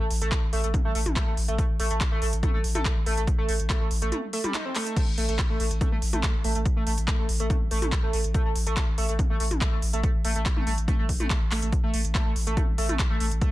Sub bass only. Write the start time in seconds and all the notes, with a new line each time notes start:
0.00 A1
0.11 A1
0.22 A1
0.43 A1
0.53 A1
0.64 A1
0.85 A1
0.95 A1
1.06 A1
1.27 A1
1.37 A1
1.48 A1
1.69 A1
1.80 A1
1.91 A1
2.12 A1
2.22 A1
2.33 A1
2.54 A1
2.64 A1
2.75 A1
2.96 A1
3.06 A1
3.17 A1
3.38 A1
3.49 A1
3.60 A1
3.81 A1
3.91 A1
4.02 A1
5.07 A1
5.18 A1
5.29 A1
5.50 A1
5.60 A1
5.71 A1
5.92 A1
6.02 A1
6.13 A1
6.34 A1
6.44 A1
6.55 A1
6.77 A1
6.87 A1
6.98 A1
7.19 A1
7.29 A1
7.40 A1
7.61 A1
7.71 A1
7.82 A1
8.03 A1
8.13 A1
8.24 A1
8.46 A1
8.56 A1
8.67 A1
8.88 A1
8.98 A1
9.09 A1
9.30 A1
9.40 A1
9.51 A1
9.72 A1
9.82 A1
9.93 A1
10.14 A1
10.25 A1
10.36 A1
10.57 A1
10.67 A1
10.78 A1
10.99 A1
11.09 A1
11.20 A1
11.41 A1
11.51 A1
11.62 A1
11.83 A1
11.94 A1
12.05 A1
12.26 A1
12.36 A1
12.47 A1
12.68 A1
12.78 A1
12.89 A1
13.10 A1
13.20 A1
13.31 A1